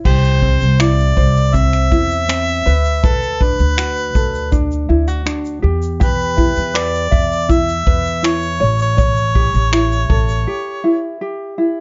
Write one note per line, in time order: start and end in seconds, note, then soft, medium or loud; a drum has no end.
0.00 0.79 E4 medium
0.00 0.12 C#5 medium
0.05 0.57 C2 medium
0.05 2.65 G4 medium
0.05 0.77 C5 medium
0.05 kick loud
0.05 crash medium
0.24 shaker soft
0.42 1.52 C4 medium
0.42 kick medium
0.61 1.13 C2 medium
0.61 shaker soft
0.80 1.90 E4 medium
0.80 1.57 D5 medium
0.80 finger snap loud
0.80 shaker medium
0.99 shaker soft
1.17 1.88 C2 medium
1.17 2.73 C5 medium
1.17 kick medium
1.36 shaker soft
1.53 2.27 C4 medium
1.53 3.07 E5 loud
1.53 kick medium
1.53 shaker medium
1.73 finger snap soft
1.73 shaker medium
1.91 2.62 E2 medium
1.91 2.74 E4 medium
1.91 kick medium
1.91 shaker soft
2.11 shaker soft
2.28 2.73 C4 medium
2.28 finger snap medium
2.28 shaker medium
2.48 shaker soft
2.66 3.56 D2 medium
2.66 3.03 B4 medium
2.66 shaker soft
2.85 shaker medium
3.03 3.44 A4 medium
3.03 6.53 B4 medium
3.03 kick loud
3.03 shaker medium
3.23 shaker soft
3.40 4.51 D4 medium
3.40 4.53 B4 medium
3.40 kick medium
3.59 4.11 D2 medium
3.59 shaker soft
3.77 4.88 F#4 medium
3.77 finger snap loud
3.77 shaker medium
3.97 shaker soft
4.15 4.85 D2 medium
4.15 5.71 A4 medium
4.15 kick medium
4.15 shaker medium
4.34 shaker medium
4.52 5.25 D4 medium
4.52 kick medium
4.52 shaker medium
4.72 shaker medium
4.89 5.60 D2 medium
4.89 5.08 E4 medium
5.08 5.71 F#4 soft
5.08 shaker medium
5.26 5.62 D4 medium
5.26 finger snap medium
5.26 shaker medium
5.45 shaker soft
5.62 6.53 E2 medium
5.62 6.00 G4 medium
5.82 shaker medium
6.00 7.86 G4 medium
6.00 6.78 B4 medium
6.00 kick loud
6.00 shaker medium
6.20 shaker soft
6.37 7.48 E4 medium
6.37 kick medium
6.56 7.09 E2 medium
6.56 shaker soft
6.74 7.11 B4 medium
6.74 7.52 D5 medium
6.74 finger snap loud
6.74 shaker medium
6.94 shaker soft
7.11 7.83 E2 medium
7.11 10.09 E5 medium
7.11 kick medium
7.32 shaker medium
7.49 8.22 E4 medium
7.49 8.27 E5 loud
7.49 kick medium
7.49 shaker medium
7.69 shaker medium
7.87 8.57 E2 medium
7.87 8.60 B4 medium
7.87 kick medium
8.06 shaker soft
8.23 9.72 E4 medium
8.23 8.81 C#5 medium
8.23 finger snap medium
8.23 shaker medium
8.42 shaker soft
8.60 9.50 A1 medium
8.60 8.96 C#5 medium
8.79 11.00 C#5 medium
8.79 shaker medium
8.97 11.80 C#5 medium
8.97 kick loud
8.97 shaker medium
9.17 shaker soft
9.35 10.46 G4 medium
9.35 kick medium
9.54 10.06 A1 medium
9.54 shaker soft
9.72 10.83 E4 medium
9.72 finger snap loud
9.72 shaker medium
9.92 shaker medium
10.09 10.44 A1 medium
10.09 11.80 A4 medium
10.09 kick medium
10.29 shaker soft
10.47 11.20 G4 medium
10.84 11.57 E4 medium
11.21 11.80 G4 medium
11.58 11.80 E4 medium